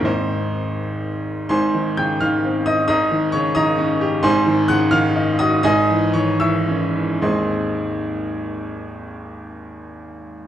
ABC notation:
X:1
M:6/8
L:1/8
Q:3/8=83
K:Ab
V:1 name="Grand piano"
c3 z3 | [cac']2 [gg'] [ff']2 [ee'] | [ebe']2 [dd'] [ebe']3 | [cac']2 [_g_g'] [ff']2 [ee'] |
[eae']2 [dd'] [_fd'_f']3 | [A,,,E,,A,CEAc']6- | [A,,,E,,A,CEAc']6 |]
V:2 name="Grand piano" clef=bass
[A,,,A,,E,CE]6 | [A,,,A,,] E, D, E, C E | [A,,,A,,] E, D, E, D G | [A,,,A,,] E, D, E, E _G |
[A,,,A,,] _F, E, F, D _F | z6 | z6 |]